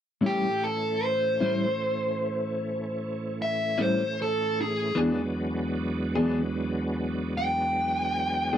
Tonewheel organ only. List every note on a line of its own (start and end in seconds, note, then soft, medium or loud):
0.22 4.93 A2 soft
0.22 4.93 E3 medium
0.22 4.93 A3 soft
0.22 4.93 C#4 soft
4.97 8.58 E2 medium
4.97 8.58 F#3 soft
4.97 8.58 G#3 medium
4.97 8.58 B3 soft
4.97 8.58 D4 medium